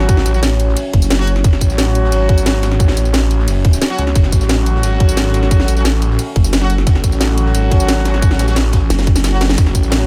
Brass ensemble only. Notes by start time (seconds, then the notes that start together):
Already playing: F#3 C#4 F#4
0.34 F#3 C#4 F#4
1.19 F#3 C#4 F#4
1.70 F#3 C#4 F#4
3.90 F#3 C#4 F#4
4.41 F#3 C#4 F#4
5.77 F#3 C#4 F#4
6.61 F#3 C#4 F#4
7.12 F#3 C#4 F#4
8.48 F#3 C#4 F#4
9.32 F#3 C#4 F#4
9.83 F#3 C#4 F#4